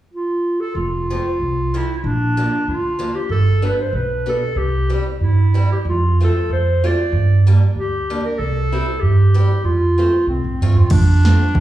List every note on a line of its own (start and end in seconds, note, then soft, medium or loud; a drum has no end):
0.13 0.62 F4 medium
0.60 0.75 A4 medium
0.75 1.17 F1 medium
0.75 1.78 F4 medium
1.10 1.24 F3 medium
1.10 1.24 A3 soft
1.10 1.24 C4 medium
1.40 1.81 C2 medium
1.74 1.88 F3 medium
1.74 1.88 A3 soft
1.74 1.88 C4 medium
1.74 1.97 E4 medium
1.97 2.07 E4 medium
2.04 2.45 A#1 medium
2.04 2.67 D4 medium
2.37 2.51 F3 medium
2.37 2.51 A#3 soft
2.37 2.51 D4 soft
2.68 3.08 D2 medium
2.68 3.17 F4 medium
2.99 3.13 F3 soft
2.99 3.13 A#3 soft
2.99 3.13 D4 medium
3.15 3.30 G4 medium
3.29 3.70 G1 medium
3.29 3.62 A4 loud
3.62 3.76 G3 soft
3.62 3.76 B3 medium
3.62 3.76 D4 medium
3.62 3.78 B4 medium
3.81 3.97 C5 medium
3.93 4.34 B1 medium
3.93 4.28 B4 medium
4.26 4.40 G3 soft
4.26 4.40 B3 soft
4.26 4.40 D4 medium
4.26 4.59 A4 medium
4.55 4.97 C2 medium
4.55 4.91 G4 loud
4.90 5.03 G3 medium
4.90 5.04 C4 soft
4.90 5.03 E4 soft
4.90 5.05 G4 medium
5.20 5.63 G2 medium
5.20 5.68 E4 medium
5.54 5.68 G3 soft
5.54 5.68 C4 soft
5.54 5.69 E4 medium
5.72 5.78 G4 medium
5.85 6.27 F2 medium
5.85 6.19 F4 medium
6.21 6.34 A3 soft
6.21 6.34 C4 soft
6.21 6.34 F4 medium
6.21 6.50 A4 medium
6.49 6.91 F2 medium
6.49 6.87 C5 medium
6.84 6.97 A3 soft
6.84 6.97 C4 soft
6.84 6.97 F4 medium
6.84 7.48 D5 medium
7.12 7.54 G2 medium
7.47 7.60 G3 medium
7.47 7.60 A#3 medium
7.47 7.60 D4 medium
7.75 8.16 D2 medium
7.75 8.22 G4 medium
8.10 8.23 G3 medium
8.10 8.23 A#3 soft
8.10 8.23 D4 medium
8.25 8.40 A#4 medium
8.39 8.80 C2 medium
8.39 9.02 A4 medium
8.72 8.86 G3 medium
8.72 8.86 C4 medium
8.72 8.86 E4 medium
9.00 9.42 G2 medium
9.00 9.63 G4 medium
9.34 9.48 G3 medium
9.34 9.48 C4 soft
9.34 9.48 E4 medium
9.64 10.05 F2 medium
9.64 10.24 F4 medium
9.98 10.11 A3 soft
9.98 10.11 C4 soft
9.98 10.11 F4 medium
10.26 10.38 C2 medium
10.26 10.78 C4 medium
10.44 10.60 A2 medium
10.61 10.75 G2 medium
10.61 10.75 A3 medium
10.61 10.75 C4 medium
10.61 10.76 F4 medium
10.76 10.89 F2 medium
10.76 10.93 F4 medium
10.90 11.33 F2 medium
10.90 11.60 D4 medium
10.90 kick medium
10.90 crash medium
11.25 11.39 A3 soft
11.25 11.39 C4 soft
11.25 11.40 F4 medium
11.25 snare medium
11.55 11.60 C2 medium
11.55 kick medium